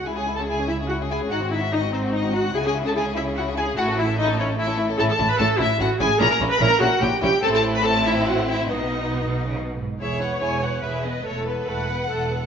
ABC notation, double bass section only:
X:1
M:3/4
L:1/8
Q:1/4=145
K:C#m
V:1 name="Double bass section" clef=bass
C,,6 | G,,,6 | C,,6 | A,,,6 |
[K:E] A,,, A,,, A,,, A,,, A,,, A,,, | ^A,,, A,,, A,,, A,,, A,,, A,,, | A,,,6 | B,,,4- B,,, z |
E,,,2 E,,,2 E,,,2 | E,,,2 E,,,2 E,,,2 |]